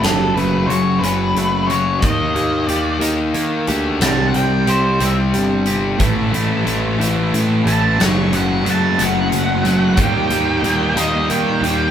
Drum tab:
HH |xxxxxx|xxxxxx|xxxxxx|xxxxxx|
SD |o-----|------|o-----|------|
BD |------|o-----|------|o-----|

HH |xxxxxx|xxxxxx|
SD |o-----|------|
BD |------|o-----|